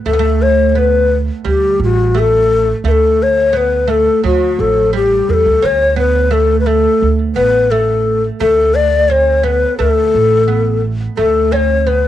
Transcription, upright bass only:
0.06 1.28 D2 medium
1.45 1.76 D2 medium
1.80 2.71 A1 medium
2.84 4.06 D2 medium
4.24 4.54 D2 medium
4.59 5.20 A1 medium
5.29 5.44 E2 medium
5.46 5.61 D2 medium
5.63 6.85 D2 medium
7.02 7.32 D2 medium
7.37 8.28 A1 medium
8.41 9.63 D2 medium
9.80 10.10 D2 medium
10.15 11.06 A1 medium
11.19 12.08 D2 medium

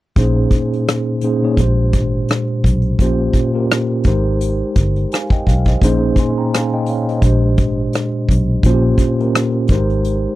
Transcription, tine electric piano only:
0.17 1.16 A#2 medium
0.17 1.17 A#3 medium
0.17 1.17 C#4 medium
0.17 1.17 D#4 medium
0.17 1.17 G#4 medium
0.17 1.17 C5 medium
1.23 1.41 A#2 medium
1.23 1.41 A#3 medium
1.23 1.41 C#4 medium
1.23 1.41 D#4 medium
1.23 1.41 G#4 medium
1.23 1.41 C5 medium
1.43 1.57 A#2 medium
1.43 1.58 A#3 medium
1.43 1.58 C#4 medium
1.43 1.59 D#4 medium
1.43 1.59 G#4 medium
1.43 1.59 C#5 medium
1.58 2.91 A#2 medium
1.58 2.92 G#3 medium
1.58 2.92 D4 medium
1.58 2.92 G4 medium
1.58 2.92 C5 medium
3.00 3.50 A#2 medium
3.00 3.50 A#3 medium
3.00 3.51 C#4 medium
3.00 3.51 F4 medium
3.00 3.51 G4 medium
3.00 3.51 C5 medium
3.54 4.02 A#2 medium
3.54 4.02 A#3 medium
3.54 4.02 C#4 soft
3.54 4.02 F4 medium
3.54 4.03 G4 medium
3.54 4.03 A#4 medium
4.05 5.38 G#3 medium
4.05 5.39 D#4 medium
4.05 5.39 G4 medium
4.05 5.39 A#4 medium
4.05 5.12 C5 medium
5.13 5.30 F5 soft
5.13 5.30 G#5 soft
5.32 5.46 D#5 soft
5.32 5.46 G5 medium
5.48 5.65 F5 medium
5.67 5.83 C5 soft
5.67 6.00 D#5 soft
5.82 6.82 A#2 medium
5.82 6.82 A#3 medium
5.82 6.82 C#4 medium
5.82 6.82 D#4 medium
5.82 6.82 G#4 medium
5.82 6.18 C5 loud
6.19 6.36 G#5 soft
6.19 6.36 C6 medium
6.38 6.53 G5 soft
6.38 6.52 A#5 soft
6.54 6.71 F5 soft
6.54 6.71 G#5 medium
6.73 6.88 D#5 medium
6.73 6.87 G5 medium
6.89 7.07 C#5 soft
6.89 7.07 F5 medium
7.09 7.25 C5 soft
7.09 7.41 D#5 medium
7.24 8.57 A#2 medium
7.24 8.57 G#3 medium
7.24 8.57 D4 medium
7.24 8.57 G4 medium
7.24 8.57 C5 medium
8.65 9.15 A#2 loud
8.65 9.15 A#3 medium
8.65 9.15 C#4 medium
8.65 9.16 F4 medium
8.65 8.72 F#4 medium
8.65 9.16 C5 loud
8.73 9.19 G4 medium
9.19 9.67 A#2 medium
9.19 9.67 A#3 medium
9.19 9.67 C#4 medium
9.19 9.67 F4 medium
9.19 9.67 G4 medium
9.19 9.68 A#4 medium
9.70 10.35 G#3 medium
9.70 10.35 D#4 medium
9.70 10.35 G4 medium
9.70 10.35 A#4 medium
9.70 10.35 C5 medium

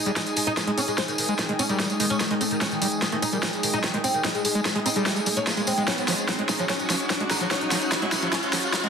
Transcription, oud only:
0.06 0.10 G#3 medium
0.16 0.21 G#3 medium
0.37 0.41 G#3 medium
0.47 0.51 D#4 medium
0.57 0.61 G#3 medium
0.67 0.72 G#3 medium
0.78 0.82 C#4 medium
0.88 0.92 G#3 medium
0.98 1.02 C4 medium
1.08 1.12 D#3 medium
1.18 1.23 D#3 medium
1.39 1.43 D#3 medium
1.49 1.53 D#3 medium
1.59 1.63 C#4 medium
1.69 1.74 D#3 medium
1.80 1.84 D#3 medium
2.00 2.04 D#3 medium
2.10 2.14 C#4 loud
2.20 2.25 D#3 medium
2.31 2.35 D#3 medium
2.41 2.45 A3 medium
2.51 2.55 D#3 medium
2.61 2.66 C#4 loud
2.71 2.76 D#3 medium
2.82 2.86 D#3 medium
3.02 3.06 D#3 medium
3.12 3.17 D#3 medium
3.22 3.27 D#4 loud
3.33 3.37 D#3 medium
3.43 3.47 D#3 medium
3.63 3.68 D#3 medium
3.73 3.78 D#4 medium
3.84 3.88 D#3 medium
3.94 3.98 D#3 medium
4.04 4.08 C4 medium
4.14 4.19 D#3 medium
4.24 4.29 D#4 loud
4.35 4.39 G#3 medium
4.45 4.49 G#3 medium
4.65 4.70 G#3 medium
4.75 4.80 G#3 medium
4.86 4.90 D#4 medium
4.96 5.00 G#3 medium
5.06 5.10 G#3 medium
5.27 5.31 G#3 medium
5.37 5.41 C#4 medium
5.47 5.51 G#3 medium
5.57 5.61 G#3 medium
5.67 5.72 C4 medium
5.78 5.82 G#3 medium
5.88 5.92 C#4 medium
5.98 6.02 F#3 medium
6.08 6.12 F#3 medium
6.29 6.33 F#3 medium
6.39 6.43 F#3 medium
6.49 6.53 D#4 medium
6.59 6.63 F#3 medium
6.69 6.74 C#4 medium
6.80 6.84 F#3 medium
6.90 6.94 F#3 medium
7.10 7.14 F#3 medium
7.20 7.25 F#3 medium
7.31 7.35 D#4 medium
7.41 7.45 F#3 medium
7.51 7.55 C#4 medium
7.61 7.65 F#3 medium
7.71 7.76 F#3 medium
7.92 7.96 F#3 medium
8.02 8.06 F#3 medium
8.12 8.17 D#4 medium
8.22 8.27 F#3 medium
8.33 8.37 C#4 loud
8.43 8.47 F#3 medium
8.53 8.57 F#3 medium
8.73 8.78 F#3 medium
8.84 8.88 F#3 medium

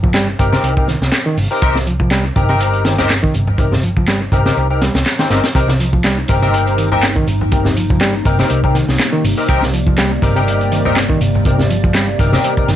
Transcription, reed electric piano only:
0.03 0.13 F3 medium
0.14 0.27 G3 loud
0.39 0.49 C3 medium
0.53 0.57 C3 medium
0.89 0.98 D#3 medium
1.26 1.37 D#3 loud
1.38 1.47 C3 medium
1.62 1.72 C3 medium
1.75 1.86 C3 medium
1.87 1.92 F3 medium
2.00 2.10 F3 medium
2.11 2.24 G3 loud
2.36 2.45 C3 medium
2.49 2.54 C3 medium
2.85 2.95 D#3 medium
3.23 3.34 D#3 loud
3.34 3.44 C3 medium
3.58 3.68 C3 medium
3.72 3.82 C3 medium
3.83 3.89 F3 medium
3.96 4.07 F3 medium
4.08 4.21 G3 loud
4.32 4.42 C3 medium
4.46 4.51 C3 medium
4.81 4.94 G3 medium
5.19 5.24 D#3 medium
5.31 5.43 C4 medium
5.55 5.65 C3 medium
5.68 5.79 C3 medium
5.80 5.86 F3 medium
5.93 6.03 F3 medium
6.04 6.17 G3 loud
6.29 6.38 C3 medium
6.42 6.47 C3 medium
6.78 6.88 D#3 medium
7.16 7.27 D#3 loud
7.27 7.37 C3 medium
7.52 7.61 C3 medium
7.65 7.76 C3 medium
7.77 7.82 F3 medium
7.90 8.00 F3 medium
8.01 8.14 G3 loud
8.26 8.35 C3 medium
8.39 8.44 C3 medium
8.75 8.84 D#3 medium
9.13 9.24 D#3 loud
9.24 9.34 C3 medium
9.49 9.58 C3 medium
9.62 9.72 C3 medium
9.73 9.79 F3 medium
9.87 9.97 F3 medium
9.98 10.11 G3 loud
10.22 10.32 C3 medium
10.36 10.41 C3 medium
10.71 10.81 D#3 medium
11.10 11.20 D#3 loud
11.21 11.30 C3 medium
11.45 11.55 C3 medium
11.58 11.69 C3 medium
11.70 11.76 F3 medium
11.83 11.93 F3 medium
11.94 12.07 G3 loud
12.19 12.29 C3 medium
12.32 12.37 C3 medium
12.68 12.76 D#3 medium

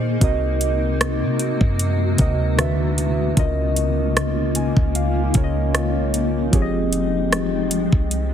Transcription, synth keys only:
0.00 0.24 A#2 medium
0.00 0.23 A#3 medium
0.00 0.23 G#4 medium
0.00 0.23 C5 medium
0.00 0.23 D#5 medium
0.20 1.24 C3 medium
0.20 1.24 C4 medium
0.20 1.25 F#4 medium
0.20 1.26 A#4 medium
0.24 1.26 D#5 loud
2.17 2.57 C3 medium
2.17 2.58 C4 medium
2.17 2.57 F#4 medium
2.17 2.59 A#4 medium
2.21 2.59 D#5 medium
2.56 3.22 D3 medium
2.56 3.22 D4 medium
2.56 3.23 F#4 medium
2.56 3.23 B4 medium
2.60 3.24 E5 medium
3.35 4.40 C#3 medium
3.35 4.40 C#4 medium
3.35 4.41 F4 medium
3.35 4.41 A#4 medium
3.39 4.42 D#5 medium
4.56 4.92 G#5 medium
4.96 5.70 F5 medium
5.33 6.11 C#3 medium
5.33 6.11 C#4 medium
5.33 6.12 F4 medium
5.33 6.12 A#4 medium
5.37 5.43 C#5 medium
5.44 5.73 D#5 medium
5.74 6.49 D#5 medium
6.51 7.56 F3 medium
6.51 7.56 C4 medium
6.51 7.57 G4 medium
6.51 7.57 G#4 medium
6.55 6.61 C#5 medium
6.62 7.61 D#5 medium

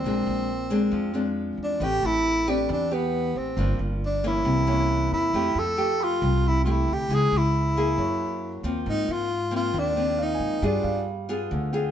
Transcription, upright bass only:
0.04 0.25 A#1 medium
0.27 0.89 A#1 medium
0.92 1.54 F2 medium
1.57 1.78 E2 medium
1.80 2.01 A1 medium
2.03 2.65 A1 medium
2.69 3.31 E2 loud
3.35 3.56 A1 medium
3.57 3.77 G1 medium
3.79 4.41 G1 medium
4.45 5.07 C2 loud
5.11 5.32 E2 medium
5.34 5.54 F2 medium
5.55 6.17 F2 medium
6.22 6.84 C2 loud
6.88 7.08 D2 medium
7.09 7.30 C#2 medium
7.32 7.94 C#2 medium
7.98 8.60 F#2 medium
8.63 8.84 D#2 medium
8.86 9.07 G#2 medium
9.08 9.70 G#2 medium
9.74 10.36 D#2 medium
10.39 10.60 G#2 medium
10.62 10.83 G2 medium
10.84 11.46 G2 medium
11.51 11.91 D2 medium

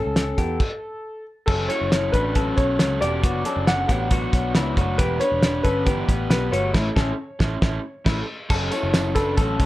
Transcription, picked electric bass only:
0.06 0.34 C#2 medium
0.38 0.57 E2 medium
1.48 1.67 F#1 medium
1.81 2.09 F#1 medium
2.14 2.51 A1 medium
2.58 2.77 B1 medium
2.80 2.98 C#2 medium
3.02 3.20 E1 medium
3.24 3.42 F#1 medium
3.57 3.85 F#1 medium
3.89 4.27 A1 medium
4.33 4.52 B1 medium
4.56 4.74 C#2 medium
4.77 4.96 F#1 medium
4.99 5.18 E1 loud
5.32 5.60 E1 medium
5.65 6.02 G1 medium
6.09 6.27 A1 medium
6.30 6.49 B1 medium
6.53 6.71 G1 medium
6.75 6.89 A1 medium
6.97 7.11 A1 loud
7.41 7.55 A1 loud
7.62 7.77 A1 loud
8.06 8.21 A1 loud
8.50 8.69 F#1 medium
8.83 9.35 F#1 medium
9.38 9.57 A1 loud
9.60 9.66 C#2 medium

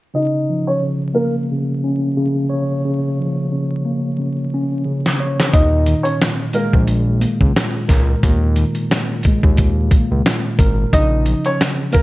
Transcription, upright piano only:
0.15 0.65 D#4 medium
0.15 0.64 D#5 medium
0.67 0.81 C#4 medium
0.67 0.80 C#5 medium
1.15 1.33 A#3 medium
1.15 1.32 A#4 medium
5.53 6.03 D#4 medium
5.53 6.03 D#5 medium
6.03 6.18 C#4 medium
6.03 6.18 C#5 medium
6.55 6.72 A#3 medium
6.55 6.72 A#4 medium
10.93 11.43 D#4 medium
10.93 11.43 D#5 medium
11.46 11.59 C#4 medium
11.46 11.59 C#5 medium
11.93 12.02 A#3 medium
11.93 12.02 A#4 medium

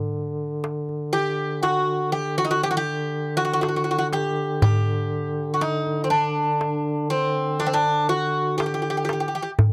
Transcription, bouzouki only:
1.13 1.62 G4 medium
1.63 2.12 F#4 medium
2.12 2.37 G4 medium
2.38 2.44 F#4 medium
2.45 2.51 D#4 medium
2.51 2.63 F#4 medium
2.63 2.70 G4 medium
2.71 2.77 F#4 medium
2.77 3.37 G4 medium
3.37 3.44 F#4 medium
3.45 3.52 F#4 medium
3.53 3.60 F#4 medium
3.61 3.67 F#4 medium
3.69 3.75 F#4 soft
3.76 3.83 F#4 soft
3.84 3.90 F#4 medium
3.91 3.97 F#4 medium
3.99 4.06 F#4 medium
4.13 4.61 G4 medium
4.62 5.53 G4 medium
5.54 5.61 F#4 medium
5.61 6.04 D#4 medium
6.04 6.10 C4 medium
6.10 7.10 D4 medium
7.10 7.61 C4 medium
7.60 7.67 D4 medium
7.66 7.74 C4 medium
7.74 8.09 D4 medium
8.09 8.57 F#4 medium
8.58 8.65 G4 medium
8.66 8.73 G4 soft
8.74 8.81 G4 soft
8.82 8.89 G4 soft
8.90 8.96 G4 medium
8.97 9.04 G4 soft
9.05 9.12 G4 medium
9.13 9.19 G4 soft
9.20 9.27 G4 soft
9.28 9.34 G4 soft
9.35 9.41 G4 medium
9.43 9.50 G4 soft

